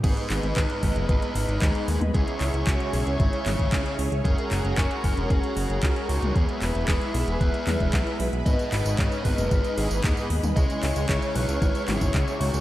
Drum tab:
CC |x---------------|----------------|----------------|----------------|
HH |xxoxxxoxxxoxxxox|xxoxxxoxxxoxxxox|xxoxxxoxxxoxxxox|xxoxxxoxxxoxxxox|
TB |----------------|----------------|----------------|----------------|
CP |--x-x-------x---|--x-x-----x-x---|--x-x-------x---|--x-x-----x-x---|
T1 |---------------o|----------o-----|---------------o|----------o-----|
BD |o---o-o-o---o---|o---o---o--oo---|o---o-o-o---o---|o---o---o--oo---|

CC |----------------|----------------|
HH |xxoxxxoxxxo-xxox|xxoxxxoxxxoxxxo-|
TB |xx-xxx-xxx-xxx-x|xx-xxx-xxx-xxx-x|
CP |--x-x-------x---|--x-x-----x-x---|
T1 |---------------o|----------o-----|
BD |o---o-o-o---o---|o---o---o--oo---|